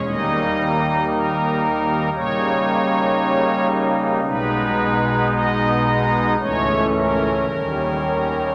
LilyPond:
<<
  \new Staff \with { instrumentName = "Pipe organ" } { \time 4/4 \key dis \phrygian \tempo 4 = 56 dis''4 ais'4 cis''4. r8 | b'4 dis''4 cis''8 ais'4. | }
  \new Staff \with { instrumentName = "Pipe organ" } { \clef bass \time 4/4 \key dis \phrygian <dis,, dis, g ais dis'>2 <cis g ais dis'>2 | <b,, b, gis b dis'>2 <cis,, cis, e a cis'>4 <dis,, dis, dis g cis'>4 | }
>>